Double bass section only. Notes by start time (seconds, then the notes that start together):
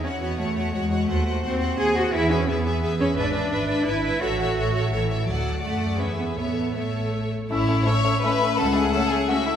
0.05 E2
0.40 E2
0.74 E2
1.09 D#2
1.44 D#2
1.79 D#2
2.14 E2
2.49 E2
2.82 E2
3.18 G#1
3.52 G#1
3.88 G#1
4.23 A1
4.58 A1
4.94 A1
5.28 D2
5.64 F#2
6.00 E2
6.37 A1
7.51 A1
8.59 C#2